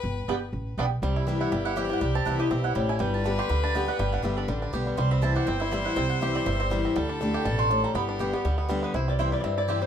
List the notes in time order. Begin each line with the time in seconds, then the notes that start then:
Already playing: B4 G5
0.04 G1
0.28 G1 G3 B3 D4 G4 D5 G5
0.53 A1
0.77 B1 G3 B3 D4 G4 D5 G5
1.02 C2 C3 G3 G4
1.16 E4
1.27 E3 G3 C4 E4
1.41 E4 F#5
1.52 G1 G2 G3 E5
1.65 E4 F#5
1.76 E3 G3 C4 E4 G4 E5
1.85 D5
1.89 G3 C4 E4
1.93 F#5
2.01 C2 C3 G3 G5
2.15 C4 A5
2.25 C2 E3 G3 C4 E4 F#5
2.39 C4 E4 G4 D#5
2.51 B1 B2 C4 E5
2.64 E4 F#5
2.75 A1 A2 G3 G5
2.89 E4 G#5
2.99 G1 G2 G3 B4 G5
3.14 A5
3.24 D3 G3 B3 D4 G4 B5
3.39 G4 C6
3.49 D2 D3 G3 B5
3.64 D4 A5
3.74 D3 G3 B3 G4 G5
3.88 G3 B3 G4 F#5
3.99 G1 G2 G3 G5
4.12 D4 F#5
4.23 G1 D3 G3 B3 G4 E5
4.37 D4 D5
4.48 A1 D3 G3
4.62 D4
4.73 B1 D3 G3 B3 G4
4.87 G3
4.97 C2 C3 G3 C5 C6
5.11 C4 B5
5.22 E3 G3 C4 E4 A5
5.36 G4 F#5
5.47 G1 G2 C4 G5
5.60 E4 E5
5.71 E3 G3 C4 E4 D5
5.85 E4 F#5
5.96 C2 C3 C4 G5
6.10 F#5
6.21 E3 G3 C4 E4 G4 E5
6.35 C4 D5
6.46 G1 G2 G3 E5
6.60 C4 C5
6.70 E3 G3 C4 E4
6.85 C4
6.96 D2 D3 G3 A4
7.09 D4
7.21 D3 A3 D4 G4
7.34 G4 G5
7.45 A1 B2 G3 A5
7.59 D4 C6
7.70 A2 D4
7.84 G3 A#5
7.94 G1 G2 B3 G4 B5
8.09 D4
8.19 D3 G3 B3 G4
8.33 B3 G4
8.45 D2 D3 G3
8.58 B3
8.69 D3 G3 B3 G4
8.83 B3 B4
8.94 C2 C3 E4 C5
9.08 G3 D5
9.19 E3 G3 C4 E4 C5 G5
9.32 G3 D5
9.40 G2 C4 D5 E5
9.58 E4 D5
9.68 E3 G3 C4 E4 G4 C5 G5
9.82 G3 C5